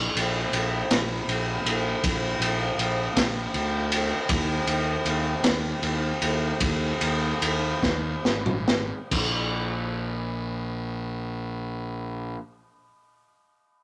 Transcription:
0, 0, Header, 1, 3, 480
1, 0, Start_track
1, 0, Tempo, 753769
1, 1290, Time_signature, 6, 3, 24, 8
1, 3213, Tempo, 786370
1, 4653, Tempo, 852273
1, 5613, Tempo, 887574
1, 8168, End_track
2, 0, Start_track
2, 0, Title_t, "Fingered electric bass"
2, 0, Program_c, 0, 33
2, 97, Note_on_c, 0, 34, 88
2, 280, Note_off_c, 0, 34, 0
2, 334, Note_on_c, 0, 34, 82
2, 517, Note_off_c, 0, 34, 0
2, 577, Note_on_c, 0, 34, 93
2, 759, Note_off_c, 0, 34, 0
2, 814, Note_on_c, 0, 34, 86
2, 997, Note_off_c, 0, 34, 0
2, 1048, Note_on_c, 0, 34, 74
2, 1233, Note_off_c, 0, 34, 0
2, 1299, Note_on_c, 0, 34, 85
2, 1480, Note_off_c, 0, 34, 0
2, 1526, Note_on_c, 0, 34, 93
2, 1712, Note_off_c, 0, 34, 0
2, 1770, Note_on_c, 0, 34, 80
2, 1954, Note_off_c, 0, 34, 0
2, 2017, Note_on_c, 0, 34, 74
2, 2199, Note_off_c, 0, 34, 0
2, 2252, Note_on_c, 0, 38, 93
2, 2620, Note_off_c, 0, 38, 0
2, 2734, Note_on_c, 0, 39, 98
2, 2917, Note_off_c, 0, 39, 0
2, 2971, Note_on_c, 0, 39, 82
2, 3156, Note_off_c, 0, 39, 0
2, 3215, Note_on_c, 0, 39, 77
2, 3393, Note_off_c, 0, 39, 0
2, 3445, Note_on_c, 0, 39, 84
2, 3626, Note_off_c, 0, 39, 0
2, 3685, Note_on_c, 0, 39, 83
2, 3866, Note_off_c, 0, 39, 0
2, 3927, Note_on_c, 0, 39, 85
2, 4109, Note_off_c, 0, 39, 0
2, 4167, Note_on_c, 0, 39, 83
2, 4352, Note_off_c, 0, 39, 0
2, 4411, Note_on_c, 0, 39, 86
2, 4599, Note_off_c, 0, 39, 0
2, 4657, Note_on_c, 0, 39, 74
2, 4834, Note_off_c, 0, 39, 0
2, 4891, Note_on_c, 0, 39, 83
2, 5071, Note_off_c, 0, 39, 0
2, 5126, Note_on_c, 0, 32, 98
2, 5501, Note_off_c, 0, 32, 0
2, 5618, Note_on_c, 0, 34, 83
2, 7367, Note_off_c, 0, 34, 0
2, 8168, End_track
3, 0, Start_track
3, 0, Title_t, "Drums"
3, 106, Note_on_c, 9, 51, 77
3, 170, Note_off_c, 9, 51, 0
3, 338, Note_on_c, 9, 51, 78
3, 402, Note_off_c, 9, 51, 0
3, 578, Note_on_c, 9, 51, 96
3, 580, Note_on_c, 9, 38, 100
3, 642, Note_off_c, 9, 51, 0
3, 644, Note_off_c, 9, 38, 0
3, 820, Note_on_c, 9, 51, 68
3, 884, Note_off_c, 9, 51, 0
3, 1059, Note_on_c, 9, 51, 83
3, 1123, Note_off_c, 9, 51, 0
3, 1297, Note_on_c, 9, 36, 112
3, 1298, Note_on_c, 9, 51, 103
3, 1361, Note_off_c, 9, 36, 0
3, 1361, Note_off_c, 9, 51, 0
3, 1539, Note_on_c, 9, 51, 77
3, 1603, Note_off_c, 9, 51, 0
3, 1777, Note_on_c, 9, 51, 67
3, 1841, Note_off_c, 9, 51, 0
3, 2015, Note_on_c, 9, 36, 76
3, 2016, Note_on_c, 9, 51, 95
3, 2019, Note_on_c, 9, 38, 115
3, 2079, Note_off_c, 9, 36, 0
3, 2080, Note_off_c, 9, 51, 0
3, 2082, Note_off_c, 9, 38, 0
3, 2255, Note_on_c, 9, 51, 67
3, 2318, Note_off_c, 9, 51, 0
3, 2494, Note_on_c, 9, 51, 81
3, 2558, Note_off_c, 9, 51, 0
3, 2732, Note_on_c, 9, 51, 102
3, 2733, Note_on_c, 9, 36, 125
3, 2796, Note_off_c, 9, 51, 0
3, 2797, Note_off_c, 9, 36, 0
3, 2975, Note_on_c, 9, 51, 73
3, 3039, Note_off_c, 9, 51, 0
3, 3219, Note_on_c, 9, 51, 69
3, 3280, Note_off_c, 9, 51, 0
3, 3453, Note_on_c, 9, 51, 102
3, 3455, Note_on_c, 9, 38, 109
3, 3514, Note_off_c, 9, 51, 0
3, 3516, Note_off_c, 9, 38, 0
3, 3690, Note_on_c, 9, 51, 70
3, 3751, Note_off_c, 9, 51, 0
3, 3928, Note_on_c, 9, 51, 79
3, 3989, Note_off_c, 9, 51, 0
3, 4164, Note_on_c, 9, 51, 101
3, 4165, Note_on_c, 9, 36, 114
3, 4225, Note_off_c, 9, 51, 0
3, 4226, Note_off_c, 9, 36, 0
3, 4412, Note_on_c, 9, 51, 78
3, 4473, Note_off_c, 9, 51, 0
3, 4661, Note_on_c, 9, 51, 82
3, 4718, Note_off_c, 9, 51, 0
3, 4890, Note_on_c, 9, 36, 79
3, 4892, Note_on_c, 9, 38, 69
3, 4946, Note_off_c, 9, 36, 0
3, 4949, Note_off_c, 9, 38, 0
3, 5130, Note_on_c, 9, 38, 74
3, 5186, Note_off_c, 9, 38, 0
3, 5247, Note_on_c, 9, 45, 75
3, 5304, Note_off_c, 9, 45, 0
3, 5370, Note_on_c, 9, 38, 106
3, 5426, Note_off_c, 9, 38, 0
3, 5616, Note_on_c, 9, 36, 103
3, 5616, Note_on_c, 9, 49, 93
3, 5670, Note_off_c, 9, 36, 0
3, 5670, Note_off_c, 9, 49, 0
3, 8168, End_track
0, 0, End_of_file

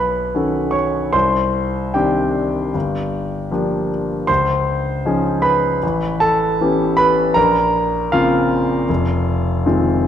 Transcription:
0, 0, Header, 1, 2, 480
1, 0, Start_track
1, 0, Tempo, 798935
1, 684, Time_signature, 4, 2, 24, 8
1, 1653, Tempo, 768246
1, 6228, End_track
2, 0, Start_track
2, 0, Title_t, "Grand piano"
2, 0, Program_c, 0, 0
2, 0, Control_c, 0, 64, 127
2, 0, Note_on_c, 0, 35, 36
2, 0, Note_on_c, 0, 71, 47
2, 0, Note_on_c, 0, 73, 40
2, 0, Note_on_c, 0, 83, 57
2, 0, Note_on_c, 0, 85, 58
2, 195, Note_off_c, 0, 35, 0
2, 207, Note_on_c, 0, 61, 26
2, 209, Note_on_c, 0, 51, 27
2, 212, Note_on_c, 0, 66, 29
2, 217, Note_on_c, 0, 69, 31
2, 421, Note_off_c, 0, 71, 0
2, 426, Note_off_c, 0, 85, 0
2, 426, Note_on_c, 0, 85, 59
2, 434, Note_off_c, 0, 73, 0
2, 434, Note_on_c, 0, 73, 46
2, 442, Note_off_c, 0, 83, 0
2, 658, Note_off_c, 0, 61, 0
2, 659, Note_off_c, 0, 51, 0
2, 661, Note_off_c, 0, 66, 0
2, 661, Note_off_c, 0, 73, 0
2, 663, Note_off_c, 0, 69, 0
2, 674, Note_off_c, 0, 85, 0
2, 676, Note_on_c, 0, 84, 70
2, 679, Note_on_c, 0, 72, 51
2, 681, Note_on_c, 0, 36, 42
2, 693, Control_c, 0, 64, 0
2, 805, Control_c, 0, 64, 127
2, 1147, Note_off_c, 0, 72, 0
2, 1158, Note_off_c, 0, 36, 0
2, 1165, Note_on_c, 0, 79, 56
2, 1170, Note_off_c, 0, 84, 0
2, 1170, Note_on_c, 0, 67, 41
2, 1172, Note_on_c, 0, 51, 31
2, 1176, Note_on_c, 0, 60, 32
2, 1179, Note_on_c, 0, 62, 30
2, 1626, Note_off_c, 0, 51, 0
2, 1629, Note_off_c, 0, 60, 0
2, 1630, Note_off_c, 0, 62, 0
2, 1648, Note_on_c, 0, 31, 43
2, 1660, Control_c, 0, 64, 0
2, 1767, Control_c, 0, 64, 127
2, 2117, Note_off_c, 0, 31, 0
2, 2123, Note_off_c, 0, 67, 0
2, 2128, Note_on_c, 0, 53, 30
2, 2130, Note_on_c, 0, 58, 32
2, 2132, Note_on_c, 0, 67, 33
2, 2133, Note_on_c, 0, 62, 30
2, 2369, Note_off_c, 0, 79, 0
2, 2584, Note_off_c, 0, 53, 0
2, 2586, Note_off_c, 0, 58, 0
2, 2587, Note_off_c, 0, 62, 0
2, 2587, Note_off_c, 0, 67, 0
2, 2604, Note_on_c, 0, 84, 73
2, 2609, Note_on_c, 0, 72, 61
2, 2615, Note_on_c, 0, 37, 41
2, 2623, Control_c, 0, 64, 0
2, 2708, Control_c, 0, 64, 127
2, 3082, Note_off_c, 0, 37, 0
2, 3093, Note_on_c, 0, 53, 35
2, 3093, Note_on_c, 0, 63, 32
2, 3096, Note_on_c, 0, 61, 36
2, 3099, Note_on_c, 0, 68, 39
2, 3307, Note_off_c, 0, 72, 0
2, 3320, Note_on_c, 0, 83, 70
2, 3323, Note_on_c, 0, 71, 53
2, 3329, Note_off_c, 0, 84, 0
2, 3548, Note_off_c, 0, 53, 0
2, 3548, Note_off_c, 0, 63, 0
2, 3550, Note_off_c, 0, 61, 0
2, 3551, Note_off_c, 0, 68, 0
2, 3575, Note_on_c, 0, 33, 46
2, 3583, Control_c, 0, 64, 0
2, 3676, Control_c, 0, 64, 127
2, 3792, Note_off_c, 0, 71, 0
2, 3809, Note_on_c, 0, 81, 74
2, 3812, Note_on_c, 0, 69, 56
2, 3815, Note_off_c, 0, 83, 0
2, 4051, Note_off_c, 0, 33, 0
2, 4064, Note_on_c, 0, 59, 35
2, 4065, Note_on_c, 0, 52, 33
2, 4067, Note_on_c, 0, 61, 36
2, 4069, Note_on_c, 0, 67, 37
2, 4272, Note_off_c, 0, 69, 0
2, 4287, Note_on_c, 0, 83, 78
2, 4295, Note_off_c, 0, 81, 0
2, 4296, Note_on_c, 0, 71, 56
2, 4512, Note_off_c, 0, 52, 0
2, 4512, Note_off_c, 0, 59, 0
2, 4513, Note_off_c, 0, 61, 0
2, 4514, Note_off_c, 0, 67, 0
2, 4518, Note_off_c, 0, 71, 0
2, 4522, Note_on_c, 0, 82, 84
2, 4530, Note_off_c, 0, 83, 0
2, 4531, Note_on_c, 0, 70, 62
2, 4532, Note_on_c, 0, 34, 50
2, 4548, Control_c, 0, 64, 0
2, 4637, Control_c, 0, 64, 127
2, 4985, Note_off_c, 0, 70, 0
2, 4996, Note_off_c, 0, 34, 0
2, 5005, Note_off_c, 0, 82, 0
2, 5008, Note_on_c, 0, 77, 70
2, 5013, Note_on_c, 0, 49, 37
2, 5014, Note_on_c, 0, 65, 54
2, 5015, Note_on_c, 0, 58, 43
2, 5020, Note_on_c, 0, 60, 41
2, 5466, Note_off_c, 0, 49, 0
2, 5466, Note_off_c, 0, 58, 0
2, 5469, Note_off_c, 0, 60, 0
2, 5489, Note_on_c, 0, 29, 53
2, 5499, Control_c, 0, 64, 0
2, 5579, Control_c, 0, 64, 127
2, 5955, Note_off_c, 0, 29, 0
2, 5963, Note_off_c, 0, 65, 0
2, 5969, Note_on_c, 0, 56, 37
2, 5971, Note_on_c, 0, 51, 39
2, 5971, Note_on_c, 0, 60, 39
2, 5973, Note_on_c, 0, 65, 41
2, 6210, Note_off_c, 0, 77, 0
2, 6228, Note_off_c, 0, 51, 0
2, 6228, Note_off_c, 0, 56, 0
2, 6228, Note_off_c, 0, 60, 0
2, 6228, Note_off_c, 0, 65, 0
2, 6228, End_track
0, 0, End_of_file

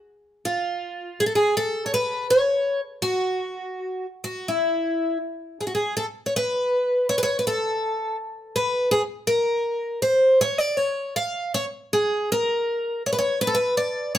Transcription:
0, 0, Header, 1, 2, 480
1, 0, Start_track
1, 0, Tempo, 738007
1, 27, Time_signature, 2, 2, 24, 8
1, 6266, Tempo, 751880
1, 9169, End_track
2, 0, Start_track
2, 0, Title_t, "Twelve-string acoustic guitar"
2, 0, Program_c, 0, 25
2, 294, Note_on_c, 0, 65, 74
2, 782, Note_on_c, 0, 68, 78
2, 786, Note_off_c, 0, 65, 0
2, 814, Note_off_c, 0, 68, 0
2, 822, Note_on_c, 0, 69, 66
2, 859, Note_off_c, 0, 69, 0
2, 880, Note_on_c, 0, 68, 76
2, 1006, Note_off_c, 0, 68, 0
2, 1020, Note_on_c, 0, 69, 87
2, 1206, Note_off_c, 0, 69, 0
2, 1209, Note_on_c, 0, 73, 63
2, 1247, Note_off_c, 0, 73, 0
2, 1260, Note_on_c, 0, 71, 86
2, 1473, Note_off_c, 0, 71, 0
2, 1498, Note_on_c, 0, 73, 92
2, 1819, Note_off_c, 0, 73, 0
2, 1965, Note_on_c, 0, 66, 86
2, 2638, Note_off_c, 0, 66, 0
2, 2758, Note_on_c, 0, 66, 69
2, 2910, Note_off_c, 0, 66, 0
2, 2916, Note_on_c, 0, 64, 67
2, 3362, Note_off_c, 0, 64, 0
2, 3646, Note_on_c, 0, 68, 59
2, 3681, Note_off_c, 0, 68, 0
2, 3686, Note_on_c, 0, 66, 51
2, 3723, Note_off_c, 0, 66, 0
2, 3738, Note_on_c, 0, 68, 61
2, 3878, Note_off_c, 0, 68, 0
2, 3881, Note_on_c, 0, 69, 74
2, 3933, Note_off_c, 0, 69, 0
2, 4073, Note_on_c, 0, 73, 64
2, 4116, Note_off_c, 0, 73, 0
2, 4138, Note_on_c, 0, 71, 78
2, 4610, Note_off_c, 0, 71, 0
2, 4613, Note_on_c, 0, 73, 85
2, 4650, Note_off_c, 0, 73, 0
2, 4670, Note_on_c, 0, 71, 77
2, 4699, Note_off_c, 0, 71, 0
2, 4701, Note_on_c, 0, 73, 86
2, 4803, Note_off_c, 0, 73, 0
2, 4806, Note_on_c, 0, 71, 61
2, 4846, Note_off_c, 0, 71, 0
2, 4858, Note_on_c, 0, 69, 80
2, 5302, Note_off_c, 0, 69, 0
2, 5566, Note_on_c, 0, 71, 82
2, 5783, Note_off_c, 0, 71, 0
2, 5797, Note_on_c, 0, 68, 91
2, 5861, Note_off_c, 0, 68, 0
2, 6031, Note_on_c, 0, 70, 81
2, 6511, Note_off_c, 0, 70, 0
2, 6513, Note_on_c, 0, 72, 81
2, 6756, Note_off_c, 0, 72, 0
2, 6762, Note_on_c, 0, 73, 89
2, 6872, Note_off_c, 0, 73, 0
2, 6872, Note_on_c, 0, 74, 84
2, 6991, Note_off_c, 0, 74, 0
2, 6991, Note_on_c, 0, 73, 78
2, 7238, Note_off_c, 0, 73, 0
2, 7241, Note_on_c, 0, 77, 90
2, 7482, Note_off_c, 0, 77, 0
2, 7485, Note_on_c, 0, 73, 85
2, 7550, Note_off_c, 0, 73, 0
2, 7732, Note_on_c, 0, 68, 85
2, 7977, Note_off_c, 0, 68, 0
2, 7980, Note_on_c, 0, 70, 82
2, 8425, Note_off_c, 0, 70, 0
2, 8455, Note_on_c, 0, 73, 76
2, 8493, Note_off_c, 0, 73, 0
2, 8495, Note_on_c, 0, 71, 71
2, 8531, Note_off_c, 0, 71, 0
2, 8533, Note_on_c, 0, 73, 82
2, 8675, Note_off_c, 0, 73, 0
2, 8678, Note_on_c, 0, 71, 95
2, 8716, Note_on_c, 0, 69, 78
2, 8724, Note_off_c, 0, 71, 0
2, 8763, Note_off_c, 0, 69, 0
2, 8763, Note_on_c, 0, 71, 88
2, 8905, Note_off_c, 0, 71, 0
2, 8908, Note_on_c, 0, 74, 84
2, 9145, Note_off_c, 0, 74, 0
2, 9148, Note_on_c, 0, 73, 91
2, 9169, Note_off_c, 0, 73, 0
2, 9169, End_track
0, 0, End_of_file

